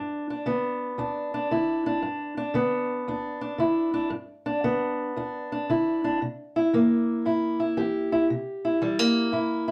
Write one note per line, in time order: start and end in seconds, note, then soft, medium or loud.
0.00 0.42 G2 medium
0.00 0.46 B3 medium
0.00 0.30 D4 medium
0.30 0.99 D4 soft
0.46 0.94 D3 medium
0.46 2.55 B3 medium
0.98 1.46 D2 medium
0.98 1.34 D4 medium
1.34 1.86 D4 medium
1.51 1.99 D3 medium
1.51 2.01 E4 medium
1.86 2.37 D4 medium
2.02 2.51 G2 medium
2.37 3.07 D4 medium
2.54 3.03 D3 medium
2.54 4.09 B3 medium
3.08 3.56 D2 medium
3.08 3.40 D4 medium
3.41 3.92 D4 medium
3.58 4.07 D3 medium
3.58 4.09 E4 medium
3.94 4.09 D4 medium
4.10 4.59 G2 medium
4.46 5.16 D4 medium
4.64 5.12 D3 medium
4.64 6.18 B3 medium
5.16 5.64 D2 medium
5.16 5.51 D4 medium
5.52 6.03 D4 soft
5.70 6.17 D3 medium
5.70 6.19 E4 medium
6.04 6.19 D4 medium
6.22 6.69 C3 medium
6.56 7.25 E4 medium
6.73 7.21 E3 medium
6.73 8.27 A#3 medium
7.25 7.73 G2 medium
7.25 7.58 E4 medium
7.60 8.11 E4 medium
7.77 8.25 E3 medium
7.77 9.32 G4 medium
8.12 8.27 E4 medium
8.30 8.78 C3 medium
8.65 9.32 E4 medium
8.82 9.30 E3 medium
8.82 8.99 G3 medium
8.99 9.71 A#3 soft
9.32 9.71 G2 medium
9.32 9.67 E4 medium
9.68 9.71 E4 medium